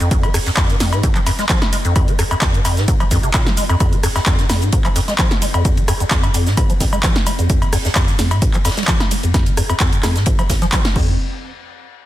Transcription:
0.00 F2, closed hi-hat, shaker
0.11 kick, closed hi-hat, ride, shaker
0.23 F3, closed hi-hat, cowbell, shaker
0.34 F2, cross-stick, open hi-hat, shaker
0.46 F2, snare, closed hi-hat, shaker
0.57 F2, kick, snare, clap, closed hi-hat, ride, cowbell, shaker
0.69 G2, snare, closed hi-hat, shaker
0.80 F2, snare, open hi-hat, ride, shaker
0.93 G#2, closed hi-hat, ride, cowbell, shaker
1.03 G#2, kick, closed hi-hat, ride, shaker
1.15 F3, clap, closed hi-hat, ride, shaker
1.26 F2, snare, open hi-hat, ride, cowbell, shaker
1.39 G#3, snare, closed hi-hat, shaker
1.49 F3, kick, snare, clap, closed hi-hat, ride, shaker
1.62 snare, closed hi-hat, cowbell, shaker
1.73 G#3, open hi-hat, ride, shaker
1.85 F2, closed hi-hat, ride, shaker
1.96 kick, closed hi-hat, ride, cowbell, shaker
2.08 F3, closed hi-hat, ride, shaker
2.19 F2, cross-stick, open hi-hat, ride, shaker
2.31 F2, closed hi-hat, cowbell, shaker
2.41 F2, kick, snare, clap, closed hi-hat, ride, shaker
2.54 G2, closed hi-hat, ride, shaker
2.65 F2, open hi-hat, ride, cowbell, shaker
2.77 G#2, snare, closed hi-hat, shaker
2.88 G#2, kick, closed hi-hat, ride, shaker
3.00 F3, closed hi-hat, cowbell, shaker
3.11 F2, kick, snare, open hi-hat, ride, shaker
3.23 C3, closed hi-hat, shaker
3.34 A#2, kick, snare, clap, closed hi-hat, ride, cowbell, shaker
3.46 G#3, snare, closed hi-hat, shaker
3.57 G#3, open hi-hat, ride, shaker
3.69 F2, closed hi-hat, cowbell, shaker
3.80 F2, kick, closed hi-hat, ride, cowbell, shaker
3.93 F3, closed hi-hat, shaker
4.03 F2, cross-stick, open hi-hat, shaker
4.16 F2, snare, closed hi-hat, cowbell, shaker
4.26 F2, kick, snare, clap, closed hi-hat, ride, shaker
4.39 G2, snare, closed hi-hat, shaker
4.49 F2, snare, open hi-hat, ride, cowbell, shaker
4.62 G#2, closed hi-hat, ride, shaker
4.72 G#2, kick, closed hi-hat, ride, shaker
4.84 F3, clap, closed hi-hat, ride, cowbell, shaker
4.96 F2, snare, open hi-hat, ride, shaker
5.08 G#3, snare, closed hi-hat, shaker
5.18 F3, kick, snare, clap, closed hi-hat, ride, cowbell, shaker
5.31 snare, closed hi-hat, shaker
5.42 G#3, open hi-hat, ride, shaker
5.54 F2, closed hi-hat, ride, cowbell, shaker
5.65 F2, kick, closed hi-hat, ride, shaker
5.77 F3, closed hi-hat, ride, shaker
5.88 F2, cross-stick, open hi-hat, ride, cowbell, shaker
6.00 F2, closed hi-hat, shaker
6.11 F2, kick, snare, clap, closed hi-hat, ride, shaker
6.23 G2, closed hi-hat, ride, cowbell, shaker
6.34 F2, open hi-hat, ride, shaker
6.46 G#2, snare, closed hi-hat, shaker
6.57 G#2, kick, closed hi-hat, ride, cowbell, shaker
6.70 F3, closed hi-hat, shaker
6.80 F2, kick, snare, open hi-hat, ride, shaker
6.93 G#3, closed hi-hat, cowbell, shaker
7.03 F3, kick, snare, clap, closed hi-hat, ride, shaker
7.16 snare, closed hi-hat, shaker
7.26 G#3, open hi-hat, ride, cowbell, shaker
7.39 F2, closed hi-hat, shaker
7.49 F2, kick, closed hi-hat, ride, shaker
7.62 F3, closed hi-hat, cowbell, shaker
7.73 F2, cross-stick, open hi-hat, shaker
7.85 F2, snare, closed hi-hat, shaker
7.95 F2, kick, snare, clap, closed hi-hat, ride, cowbell, shaker
8.08 G2, snare, closed hi-hat, shaker
8.19 F2, snare, open hi-hat, ride, shaker
8.31 G#2, closed hi-hat, ride, cowbell, shaker
8.42 G#2, kick, closed hi-hat, ride, shaker
8.53 F3, clap, closed hi-hat, ride, shaker
8.65 F2, snare, open hi-hat, ride, cowbell, shaker
8.71 snare, ride
8.77 G#3, snare, closed hi-hat, ride, shaker
8.83 snare, ride
8.88 F3, kick, snare, clap, closed hi-hat, ride, shaker
9.00 snare, closed hi-hat, cowbell, shaker
9.11 G#3, open hi-hat, ride, shaker
9.23 F2, closed hi-hat, ride, shaker
9.34 F2, kick, snare, closed hi-hat, ride, cowbell, shaker
9.46 F3, closed hi-hat, ride, shaker
9.57 F2, cross-stick, open hi-hat, ride, shaker
9.70 F2, closed hi-hat, cowbell, shaker
9.80 F2, kick, snare, clap, closed hi-hat, ride, shaker
9.92 G2, closed hi-hat, ride, shaker
10.03 F2, cross-stick, snare, clap, open hi-hat, ride, cowbell, shaker
10.16 G#2, snare, closed hi-hat, shaker
10.26 G#2, kick, closed hi-hat, ride, shaker
10.39 F3, closed hi-hat, cowbell, shaker
10.50 D#2, kick, snare, open hi-hat, ride, shaker
10.62 F3, snare, closed hi-hat, shaker
10.72 F3, kick, snare, clap, closed hi-hat, ride, cowbell, shaker
10.85 snare, closed hi-hat, ride, shaker
10.96 F2, kick, crash

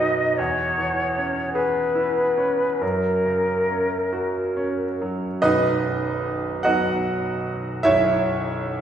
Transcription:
Already playing: B1 F#2 F#4 B4 D#5
0.00 D#4
0.37 E2 C#5
0.78 E3
1.17 C#4
1.53 G#4 B4
1.95 E4
2.37 C#4
2.81 F#2 A#4
3.25 C#3
3.70 C#4
4.13 F#4
4.57 C#4
5.02 F#3
5.42 B0 B1 D#4 B4 D#5
6.63 F#3 B3 D#4 F#4 D#5 F#5
7.83 B0 B1 E4 C#5 E5

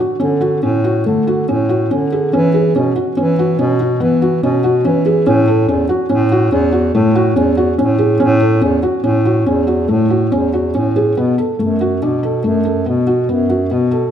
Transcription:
0.00 F#4
0.20 D3 C#4
0.41 F#4
0.63 A2 C#4
0.84 F#4
1.06 D3 A3
1.27 F#4
1.48 A2 C#4
1.69 F#4
1.91 D3 C#4
2.12 G#4
2.33 E3 C#4
2.54 G#4
2.76 B2 C#4
2.96 F#4
3.17 E3 C#4
3.39 F#4
3.59 B2 C#4
3.80 F#4
4.00 E3 B3
4.22 F#4
4.43 B2 C#4
4.64 F#4
4.85 E3 C#4
5.06 G#4
5.26 A2 C#4
5.47 A4
5.68 E2 C#4
5.89 F#4
6.09 A2 C#4
6.32 F#4
6.52 E2 C#4
6.72 F#4
6.94 A2 A3
7.15 F#4
7.36 E2 C#4
7.57 F#4
7.78 A2 C#4
7.98 G#4
8.20 A2 C#4
8.41 A4
8.61 E2 C#4
8.83 F#4
9.04 A2 C#4
9.25 F#4
9.46 E2 C#4
9.67 F#4
9.88 A2 A3
10.10 F#4
10.32 E2 C#4
10.53 F#4
10.75 A2 C#4
10.96 G#4
11.17 B2 B3
11.38 A4
11.59 F#2 A3
11.81 F#4
12.02 B2 D4
12.23 A4
12.44 F#2 A3
12.65 A4
12.86 B2 B3
13.07 F#4
13.29 F#2 B3
13.49 F#4
13.71 B2 B3
13.91 A4

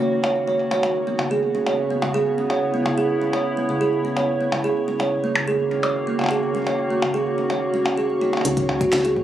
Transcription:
Already playing: D#3 A#3 F#4 C#5
0.24 C#5, percussion blips
0.47 C#5
0.71 C#5, percussion blips
0.83 C#3 C#5, percussion blips
1.07 B3
1.19 C#3 B3, percussion blips
1.31 G#4
1.42 C#5
1.55 C#4
1.66 C#5, percussion blips
1.86 E4
1.90 B3
2.02 C#3, percussion blips
2.14 G#4
2.38 C#4
2.50 C#5, percussion blips
2.74 B3
2.86 C#3, percussion blips
2.98 G#4
3.22 C#4
3.33 C#5, percussion blips
3.57 B3
3.69 C#3
3.81 G#4
4.05 C#4
4.17 C#5, percussion blips
4.41 B3
4.52 C#3, percussion blips
4.64 D#3 G#4
4.73 A#3
4.88 C#4
5.00 C#5, percussion blips
5.24 A#3
5.32 C#3 F#4, percussion blips
5.48 G#4
5.71 C#4
5.83 C#5, percussion blips
6.07 A#3
6.19 C#3, percussion blips
6.21 percussion blips
6.24 percussion blips
6.26 percussion blips
6.29 G#4, percussion blips
6.55 C#4
6.67 C#5, percussion blips
6.90 A#3
7.02 C#3, percussion blips
7.14 G#4
7.38 C#4
7.50 C#5, percussion blips
7.74 C#4
7.86 C#4, percussion blips
7.98 G#4
8.21 D#4
8.33 percussion blips
8.37 percussion blips
8.41 C#2 C#3 C#4, closed hi-hat, percussion blips
8.57 B3, kick, closed hi-hat
8.69 percussion blips
8.81 F#4, kick, closed hi-hat
8.93 C#2, snare, closed hi-hat, percussion blips
9.05 E4 G#4, closed hi-hat
9.16 kick

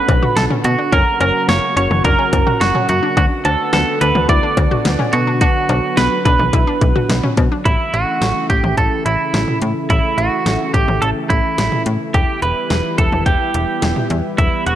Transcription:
Already playing: D3 A3 B3 C#4 F#4 B4
0.09 B1, kick, closed hi-hat, cowbell
0.23 F#4, mid tom
0.36 B1 A4, snare, closed hi-hat
0.50 C#4, mid tom
0.64 B2 F#4, closed hi-hat
0.79 D4
0.92 F#1 C#3 F#3 A#3 C#4 A#4, kick, closed hi-hat
1.20 F#1 C#4 A#4, closed hi-hat, cowbell
1.49 F#1 A#3 C#5, snare, closed hi-hat
1.76 F#1 C#4 C#5, closed hi-hat
1.91 F#1, mid tom
2.04 F#1 D4 A#4, kick, closed hi-hat
2.19 C#4
2.33 F#1, kick, closed hi-hat, cowbell
2.47 F#4, mid tom
2.61 F#1 F#4, snare, closed hi-hat
2.75 C#4, mid tom
2.89 F#2 F#4, closed hi-hat
3.03 D4
3.17 D2 D3 A3 B3 D4 F#4, kick, closed hi-hat
3.45 D2 D4 A4, closed hi-hat, cowbell
3.73 D2 B3 A4, snare, closed hi-hat
4.01 D2 D4 B4, closed hi-hat
4.15 D2, mid tom
4.29 D2 E4 D5, kick, closed hi-hat
4.43 D4
4.57 D2, kick, closed hi-hat, cowbell
4.71 F#4, mid tom
4.85 D2, snare, closed hi-hat
4.99 C#4, mid tom
5.13 B2 F#3 F#4, closed hi-hat
5.27 D4
5.41 D4 F#4, kick, closed hi-hat
5.69 B1 D4, closed hi-hat, cowbell
5.97 B1 B3 B4, snare, closed hi-hat
6.25 B1 D4 B4, kick, closed hi-hat
6.39 B1, mid tom
6.53 B1 E4, kick, closed hi-hat
6.67 D4
6.81 B1, kick, closed hi-hat
6.96 F#4, mid tom
7.09 B1, snare, closed hi-hat
7.23 C#4, mid tom
7.37 B2, kick, closed hi-hat, cowbell
7.52 D4
7.65 A1 C#3 E3 A3 E4, kick, closed hi-hat
7.94 A1 F#4, closed hi-hat
8.21 A1, snare, closed hi-hat
8.50 A1 G4, kick, closed hi-hat
8.64 A1, mid tom
8.77 A1 A4, kick, closed hi-hat
9.06 A1 E4, closed hi-hat
9.34 A1, snare, closed hi-hat
9.48 mid tom
9.62 A2, closed hi-hat
9.90 A1 E4, kick, closed hi-hat
10.18 A1 F#4, closed hi-hat
10.46 A1, snare, closed hi-hat
10.74 A1 G4, kick, closed hi-hat
10.88 A1, mid tom
11.02 A1 A4, closed hi-hat
11.30 A1 E4, kick, closed hi-hat
11.58 A1, snare, closed hi-hat
11.72 mid tom
11.86 A2, closed hi-hat
12.14 E1 G3 B3 E4 G4, kick, closed hi-hat
12.42 E1 B4, closed hi-hat
12.70 E1, snare, closed hi-hat
12.98 E1 A4, kick, closed hi-hat
13.12 E1, mid tom
13.26 E1 G4, kick, closed hi-hat
13.54 E1, closed hi-hat
13.82 E1, snare, closed hi-hat
13.96 mid tom
14.10 E2, closed hi-hat
14.38 E1 E4, kick, closed hi-hat
14.66 E1 F#4, closed hi-hat

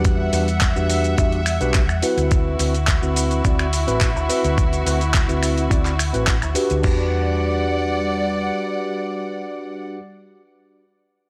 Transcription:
Already playing: E2 G3 D4 F#4 G4 B4 F#5
0.05 E5, kick, closed hi-hat, shaker
0.32 E2 D4 F#4 G4 B4, open hi-hat, shaker
0.48 closed hi-hat, shaker
0.61 kick, clap, closed hi-hat, shaker
0.76 E2 D4 F#4 G4 B4, shaker
0.90 open hi-hat, shaker
1.04 closed hi-hat, shaker
1.17 E2 D4 F#4 G4 E5, kick, closed hi-hat, shaker
1.32 closed hi-hat
1.46 finger snap, open hi-hat, shaker
1.60 B1 D4 F#4 G4 B4, closed hi-hat, shaker
1.74 kick, clap, closed hi-hat, shaker
1.89 E2, finger snap, shaker
2.02 C4 E4 F#4 B4, open hi-hat, shaker
2.17 D2, closed hi-hat, shaker
2.31 E4 F#4, kick, closed hi-hat, shaker
2.59 D2 C4 E4 F#4 B4, open hi-hat, shaker
2.74 closed hi-hat, shaker
2.87 kick, clap, closed hi-hat, shaker
3.02 D2 C4 E4 F#4 B4, shaker
3.16 open hi-hat, shaker
3.31 closed hi-hat, shaker
3.44 D2 C4 E4 F#4 D5, kick, closed hi-hat, shaker
3.59 finger snap, closed hi-hat
3.73 open hi-hat, shaker
3.87 A1 C4 E4 F#4 B4, closed hi-hat, shaker
4.01 kick, clap, closed hi-hat, shaker
4.16 D2, shaker
4.29 C4 E4 F#4 B4, open hi-hat, shaker
4.44 D2, closed hi-hat, shaker
4.58 kick, closed hi-hat, shaker
4.73 closed hi-hat, shaker
4.85 D2 C4 E4 F#4 B4, open hi-hat, shaker
5.01 closed hi-hat, shaker
5.14 kick, clap, closed hi-hat, shaker
5.28 D2 C4 E4 F#4 B4, closed hi-hat, shaker
5.43 finger snap, open hi-hat, shaker
5.58 closed hi-hat, shaker
5.70 D2 C4 E4 F#4 D5, kick, closed hi-hat, shaker
5.85 clap, closed hi-hat, shaker
5.99 finger snap, open hi-hat, shaker
6.13 A1 C4 E4 F#4 B4, closed hi-hat, shaker
6.27 kick, clap, closed hi-hat, shaker
6.42 D2, finger snap, closed hi-hat, shaker
6.54 D4 F#4 G4 B4, open hi-hat, shaker
6.70 D2, closed hi-hat, shaker
6.82 E2 G3 D4 F#4 G4 B4 D5 F#5, kick, crash

